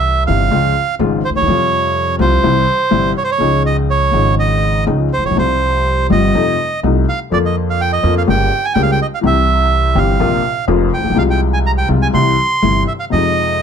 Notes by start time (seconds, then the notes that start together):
Already playing: C2 C3 E3 G3 E4 E5
0.27 G1 G2 C3 E3 G3 E4 F5
0.51 C#2 C#3 F3 G#3 F4
0.99 G#1 G#2 C#3 F3 G#3 F4
1.25 C5
1.30 D2
1.36 D#2 C#5
1.42 E2
1.46 F2 C3 F3 G3 F4
2.19 C2 C3 F3 G3 F4 C5
2.43 C2 C3 E3 G3 E4
2.91 G1 G2 C3 E3 G3 E4
3.18 C#5
3.24 C5
3.31 C#5
3.38 C#2 C#3 F3 G#3
3.42 D#4
3.66 D#5
3.90 C#5
4.11 G#1 G#2 C#3 F3 G#3 D#4
4.39 D#5
4.87 C#2 C#3 F3 G#3 D#4
5.13 C5
5.18 A1
5.25 A#1 C#5
5.31 B1
5.36 C2 C3 F3 G3 F4 C5
6.10 G1 G2 C3 F3 G3 F4 D#5
6.35 F2 C3 F3 A3 D#4
6.83 C2 C3 F3 A3 D#4
7.09 F5
7.30 F2 D3 F3 A#3 F4 D5
7.45 D#5
7.70 F5
7.81 G5
7.93 D#5
8.03 F2 D3 F3 A#3 F4
8.18 F5
8.27 G1 G2 C#3 G3 A#3 G4 G5
8.65 G#5
8.74 C#2 C#3 G3 A#3 G4 G5
8.82 F5
8.92 G5
9.02 D#5
9.14 F5
9.21 C2 C3 E3 G3 C4
9.25 G4 E5
9.95 G1 G2 E3 G3 C4 G4 F5
10.20 A#1 A#2 C3 F3 A#3 F4
10.68 F1 F2 C3 F3 A#3 F4
10.94 G5
10.98 A1
11.04 A#1
11.10 B1
11.14 C2 C3 F3 G#3 F5
11.18 F4
11.30 G5
11.53 G#5
11.66 A#5
11.78 G5
11.89 C2 C3 F3 G#3 F4
12.02 G#5
12.13 C2 C3 E3 G3 E4 C6
12.62 G1 G2 C3 E3 G3 E4
12.87 E5
13.00 F5
13.10 F2 C3 F3 G#3 D#5
13.14 D#4